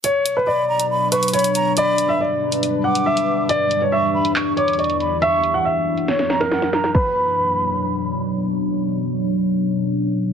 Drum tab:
CC |--------------------------------|--------------------------------|--------------------------------|--------------------------------|
HH |x---x---------x-----x-xxxxx-x---|x---x---------x-x-----x---x-----|x---x---------x-----x-xxxxx-x---|x---x---------x-x-x---x---x-----|
CP |--------------------------------|--------------------------------|----------------x---------------|--------------------------------|
SD |--------------------------------|--------------------------------|--------------------------------|----------------o-o-o-o-o-o-o-o-|
BD |--------------------------------|--------------------------------|--------------------------------|--------------------------------|

CC |x-------------------------------|--------------------------------|
HH |--------------------------------|--------------------------------|
CP |--------------------------------|--------------------------------|
SD |--------------------------------|--------------------------------|
BD |o-------------------------------|--------------------------------|